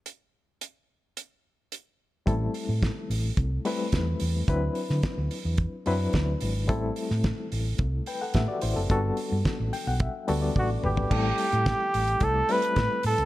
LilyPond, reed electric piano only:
\new Staff \with { instrumentName = "Reed electric piano" } { \time 4/4 \key a \dorian \tempo 4 = 109 << { r1 | r1 | r1 | r2 r8 <b' g''>16 <a' fis''>16 <g' e''>16 <fis' d''>16 <e' c''>16 <c' a'>16~ |
<c' a'>16 r4 r16 g''16 fis''16 e''8. d''16 d''8 b'8 | r1 | } \\ { r1 | <g a c' e' a'>4. r4 <g a c' e' b'>4 r8 | <fis c' d' e' b'>4. r4 <fis c' d' e' b'>4 r8 | <g a c' e' a'>4. r2 r8 |
<g b d' fis' a'>4. r4 <g b d' fis' a'>4 r8 | <g a c' e' a'>4. r8 <g a c' e' a'>8 <g a c' e' b'>4 r8 | } >> }